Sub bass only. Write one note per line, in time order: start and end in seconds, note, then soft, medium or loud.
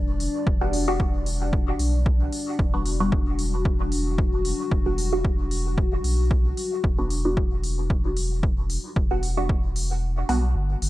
0.00 0.29 E1 loud
0.47 1.74 E1 loud
1.79 2.27 B1 medium
2.59 4.53 E1 loud
4.71 5.99 E1 loud
6.04 6.52 B1 medium
6.84 8.78 E1 loud
8.96 10.24 E1 loud
10.29 10.55 B1 medium
10.56 10.76 G1 medium
10.82 10.89 G1 loud